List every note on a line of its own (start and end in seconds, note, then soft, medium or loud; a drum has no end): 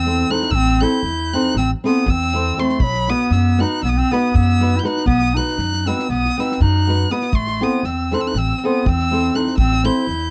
0.00 0.23 E2 loud
0.00 0.33 C4 loud
0.00 0.32 E6 loud
0.06 0.25 C4 medium
0.06 0.25 E4 soft
0.06 0.26 A4 medium
0.06 0.26 C5 medium
0.06 snare soft
0.29 0.49 C4 medium
0.29 0.57 D#4 medium
0.29 0.49 E4 medium
0.29 0.50 A4 medium
0.29 0.50 C5 medium
0.29 0.52 F#6 loud
0.29 snare soft
0.42 snare soft
0.51 0.83 A1 medium
0.51 0.82 E6 loud
0.51 kick medium
0.55 0.85 C4 loud
0.81 1.01 C4 medium
0.81 1.01 E4 medium
0.81 1.36 E4 medium
0.81 1.01 A4 medium
0.81 1.02 C5 medium
0.81 1.35 G6 loud
0.81 snare soft
1.03 1.34 E2 medium
1.03 snare soft
1.33 1.53 C4 medium
1.33 1.57 D#4 medium
1.33 1.53 E4 medium
1.33 1.53 A4 medium
1.33 1.54 C5 medium
1.33 1.57 F#6 loud
1.33 snare soft
1.55 1.72 A1 medium
1.55 1.71 C4 medium
1.55 1.70 E6 loud
1.55 snare soft
1.84 2.12 B3 medium
1.84 2.04 C4 medium
1.84 2.04 E4 medium
1.84 2.05 A4 medium
1.84 2.05 C5 medium
1.84 2.12 D#6 loud
1.84 snare soft
2.06 2.50 E2 loud
2.06 2.61 E6 loud
2.06 kick medium
2.11 2.62 C4 loud
2.33 2.53 C4 medium
2.33 2.54 E4 medium
2.33 2.54 A4 medium
2.33 2.54 C5 medium
2.33 snare soft
2.57 2.85 A3 medium
2.57 2.77 C4 medium
2.57 2.77 E4 medium
2.57 2.77 A4 medium
2.57 2.78 C5 medium
2.57 2.83 C6 loud
2.57 snare soft
2.69 snare soft
2.79 3.10 B1 medium
2.79 3.11 B5 loud
2.79 kick loud
2.83 3.12 F#3 loud
2.93 snare soft
3.08 3.28 B3 medium
3.08 3.34 B3 medium
3.08 3.29 D#4 medium
3.08 3.29 F#4 soft
3.08 3.29 B4 medium
3.08 3.34 D#6 loud
3.08 snare soft
3.31 3.62 F#2 loud
3.31 3.63 B3 loud
3.31 3.62 E6 medium
3.31 snare soft
3.59 3.79 B3 medium
3.59 3.80 D#4 medium
3.59 3.84 D#4 medium
3.59 3.80 F#4 medium
3.59 3.80 B4 medium
3.59 3.83 F#6 medium
3.59 snare soft
3.83 4.00 B1 medium
3.83 3.91 B3 medium
3.83 3.90 E6 loud
3.83 snare soft
3.89 3.99 B3 medium
3.89 4.00 D#6 medium
3.97 4.13 C4 loud
3.97 4.13 E6 loud
4.11 4.31 B3 medium
4.11 4.36 B3 medium
4.11 4.32 D#4 medium
4.11 4.32 F#4 medium
4.11 4.32 B4 medium
4.11 4.37 D#6 loud
4.11 snare soft
4.34 4.78 F#2 loud
4.34 4.78 B3 loud
4.34 4.81 E6 loud
4.34 kick medium
4.49 snare soft
4.60 4.80 B3 medium
4.60 4.80 D#4 medium
4.60 4.81 F#4 medium
4.60 4.81 B4 medium
4.60 snare soft
4.77 4.86 E4 medium
4.77 4.87 G6 medium
4.83 5.03 B3 medium
4.83 5.03 D#4 medium
4.83 5.06 D#4 medium
4.83 5.04 F#4 medium
4.83 5.04 B4 medium
4.83 5.07 F#6 loud
4.83 snare soft
4.97 snare soft
5.06 5.37 B1 medium
5.06 5.36 B3 loud
5.06 5.38 D#6 loud
5.06 kick medium
5.22 snare soft
5.34 5.55 B3 medium
5.34 5.87 D#4 medium
5.34 5.55 D#4 medium
5.34 5.56 F#4 medium
5.34 5.56 B4 medium
5.34 5.88 F#6 loud
5.34 snare soft
5.48 snare soft
5.58 5.89 F#2 medium
5.58 snare soft
5.73 snare soft
5.86 6.06 B3 medium
5.86 6.08 C4 medium
5.86 6.07 D#4 medium
5.86 6.07 F#4 medium
5.86 6.07 B4 medium
5.86 6.10 E6 loud
5.86 snare soft
5.99 snare soft
6.09 6.26 B1 medium
6.09 6.39 B3 medium
6.09 6.41 D#6 loud
6.09 snare soft
6.25 snare soft
6.37 6.58 B3 medium
6.37 6.61 C4 medium
6.37 6.58 D#4 medium
6.37 6.58 F#4 medium
6.37 6.59 B4 medium
6.37 6.62 E6 loud
6.37 snare soft
6.52 snare soft
6.61 7.04 F#2 loud
6.61 7.13 D#4 loud
6.61 7.12 F#6 loud
6.61 kick medium
6.76 snare soft
6.87 7.07 B3 medium
6.87 7.07 D#4 medium
6.87 7.07 F#4 medium
6.87 7.08 B4 medium
6.87 snare soft
7.11 7.30 B3 medium
7.11 7.35 B3 medium
7.11 7.30 D#4 medium
7.11 7.30 F#4 soft
7.11 7.30 B4 medium
7.11 7.36 D#6 medium
7.11 snare soft
7.22 snare soft
7.32 7.63 A1 medium
7.32 7.63 A3 medium
7.32 7.65 C6 loud
7.32 kick medium
7.47 snare soft
7.60 7.87 B3 medium
7.60 7.81 C4 medium
7.60 7.81 E4 medium
7.60 7.81 A4 medium
7.60 7.82 C5 medium
7.60 7.86 D#6 medium
7.60 snare soft
7.83 8.14 E2 medium
7.83 8.15 C4 medium
7.83 8.16 E6 medium
7.83 snare soft
8.11 8.31 C4 medium
8.11 8.21 D#4 medium
8.11 8.32 E4 medium
8.11 8.32 A4 medium
8.11 8.32 C5 medium
8.11 8.22 F#6 medium
8.11 snare soft
8.19 8.28 C4 medium
8.19 8.29 E6 medium
8.27 8.38 D#4 medium
8.27 8.40 F#6 loud
8.34 8.51 A1 medium
8.34 8.57 C4 medium
8.34 snare soft
8.38 8.58 E6 loud
8.57 8.67 C4 medium
8.57 8.67 E6 medium
8.63 8.88 B3 medium
8.63 8.83 C4 medium
8.63 8.83 E4 medium
8.63 8.84 A4 medium
8.63 8.84 C5 medium
8.63 8.90 D#6 loud
8.86 9.28 E2 medium
8.86 9.38 C4 medium
8.86 9.37 E6 loud
8.86 kick loud
8.99 snare soft
9.11 9.31 C4 medium
9.11 9.31 E4 medium
9.11 9.32 A4 medium
9.11 9.32 C5 medium
9.11 snare soft
9.34 9.54 C4 medium
9.34 9.59 D#4 medium
9.34 9.54 E4 medium
9.34 9.54 A4 medium
9.34 9.54 C5 medium
9.34 9.57 F#6 loud
9.34 snare soft
9.47 snare soft
9.57 9.88 A1 medium
9.57 9.87 C4 loud
9.57 9.86 E6 loud
9.57 kick medium
9.72 snare soft
9.84 10.04 C4 medium
9.84 10.04 E4 medium
9.84 10.30 E4 medium
9.84 10.05 A4 medium
9.84 10.05 C5 medium
9.84 10.30 G6 loud
10.07 10.30 E2 medium
10.07 snare soft